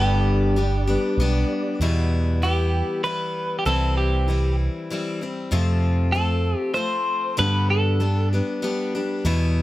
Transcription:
Already playing: picked electric bass G1, steel-string acoustic guitar G2 D3 G3 B3 D4 G4, tonewheel organ G3 D4 D5, clean electric guitar G4
0.56 steel-string acoustic guitar G3 B3 D4 G4
0.87 steel-string acoustic guitar G3 B3 D4 G4
1.18 picked electric bass B1, steel-string acoustic guitar G3 B3 D4 G4
1.80 picked electric bass E2, steel-string acoustic guitar E2 B2 E3 G3 B3 E4
2.42 steel-string acoustic guitar E3 G3 B3 E4, clean electric guitar G4
3.04 steel-string acoustic guitar E3 G3 B3 E4, clean electric guitar B4
3.59 clean electric guitar G4
3.65 picked electric bass C2, steel-string acoustic guitar C3 E3 G3 C4 E4, clean electric guitar A4
3.98 clean electric guitar G4
4.28 steel-string acoustic guitar E3 G3 C4 E4
4.90 steel-string acoustic guitar E3 G3 C4 E4
5.21 steel-string acoustic guitar G3 C4 E4
5.51 steel-string acoustic guitar F2 C3 F3 A3 C4 F4, picked electric bass F2
6.12 steel-string acoustic guitar F3 A3 C4 F4, clean electric guitar A4
6.57 clean electric guitar G4
6.74 steel-string acoustic guitar F3 A3 C4 F4, clean electric guitar C5
7.37 steel-string acoustic guitar G2 D3 G3 B3 D4 G4, picked electric bass G2, clean electric guitar B4
7.70 clean electric guitar A4
8.00 steel-string acoustic guitar G3 B3 D4 G4
8.33 steel-string acoustic guitar G3 B3 D4 G4
8.62 steel-string acoustic guitar G3 B3 D4 G4
8.95 steel-string acoustic guitar G3 B3 D4 G4
9.25 steel-string acoustic guitar E2 B2 E3 G3 B3 E4, picked electric bass E2

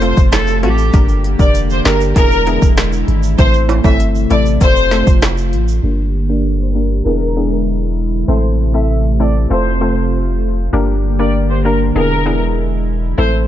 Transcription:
Already playing: sub bass F1, analog synth pad C3 A3 F4, violin section C5
0.01 synth pluck A3 C4 F4 A4, closed hi-hat, shaker
0.17 sub bass F1, kick, shaker
0.32 cello A4, finger snap, cross-stick, snare, closed hi-hat, high timbale, shaker
0.47 shaker
0.63 sub bass A1, synth pluck A3 C4 F4 A4, cello G4, closed hi-hat
0.78 shaker
0.93 sub bass G1, analog synth pad D3 A#3 G4, synth pluck A#3 D4 G4 A#4, kick, closed hi-hat, shaker
1.09 shaker
1.24 closed hi-hat
1.39 sub bass F1, synth pluck A#3 D4 G4 A#4, violin section D5, kick, shaker
1.55 closed hi-hat, shaker
1.70 violin section C5, shaker
1.85 sub bass G1, synth pluck A#3 D4 G4 A#4, violin section A#4, finger snap, snare, closed hi-hat, shaker
2.01 shaker
2.16 sub bass E1, analog synth pad D3 G#3 E4, synth pluck B3 D4 E4 G#4, violin section A#4, kick, closed hi-hat, shaker
2.32 shaker
2.46 synth pluck B3 D4 E4 G#4, closed hi-hat, shaker
2.62 sub bass E1, kick, shaker
2.77 finger snap, cross-stick, snare, closed hi-hat, shaker
2.93 shaker
3.08 sub bass G#1, closed hi-hat
3.23 shaker
3.38 sub bass A1, analog synth pad C3 A3, synth pluck A3 C4 E4 A4, violin section C5, kick, closed hi-hat, shaker
3.54 shaker
3.69 closed hi-hat, high timbale
3.84 sub bass G1, synth pluck A3 C4 E4 A4, violin section E5, kick, high timbale, shaker
4.00 closed hi-hat, shaker
4.15 shaker
4.30 sub bass A1, synth pluck A3 C4 E4 A4, violin section D5, closed hi-hat, shaker
4.46 shaker
4.61 sub bass F1, synth pluck A3 C4 F4 A4, analog synth pad A3 F4, violin section C5, kick, closed hi-hat, shaker
4.76 shaker
4.91 synth pluck A3 C4 F4 A4, snare, closed hi-hat, shaker
5.07 sub bass F1, kick, shaker
5.22 finger snap, cross-stick, snare, closed hi-hat, high timbale, shaker
5.38 shaker
5.53 sub bass A1, closed hi-hat
5.68 shaker
5.83 sub bass G1, analog synth pad D3 A#3 G4, synth pluck A#3 D4 G4 A#4
6.29 synth pluck A#3 D4 G4 A#4, violin section D5
6.60 violin section C5
6.75 synth pluck A#3 D4 G4 A#4, violin section A#4
7.05 sub bass E1, analog synth pad D3 G#3 E4, synth pluck B3 D4 E4 G#4, violin section A#4
7.36 synth pluck B3 D4 E4 G#4
8.28 sub bass A1, analog synth pad C3 A3, synth pluck A3 C4 E4 A4, violin section C5
8.74 synth pluck A3 C4 E4 A4, violin section E5
9.20 synth pluck A3 C4 E4 A4, violin section D5
9.50 sub bass F1, synth pluck A3 C4 F4 A4, analog synth pad A3 F4, violin section C5
9.81 synth pluck A3 C4 F4 A4
10.73 sub bass G1, analog synth pad D3 A#3 G4, synth pluck A#3 D4 G4 A#4
11.19 synth pluck A#3 D4 G4 A#4, violin section D5
11.50 violin section C5
11.65 synth pluck A#3 D4 G4 A#4, violin section A#4
11.95 sub bass E1, analog synth pad G#3 E4, synth pluck B3 D4 E4 G#4, violin section A#4
12.26 synth pluck B3 D4 E4 G#4
13.18 sub bass A1, analog synth pad C3 A3, synth pluck A3 C4 E4 A4, violin section C5

